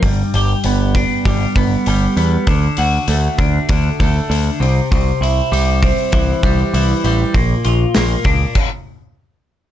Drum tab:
CC |--------|--------|--------|----x---|
HH |oooooooo|oooooooo|oooooooo|oooo----|
SD |--------|--------|--------|--o-----|
BD |o--ooo--|o--ooo--|o--ooo--|o--oo---|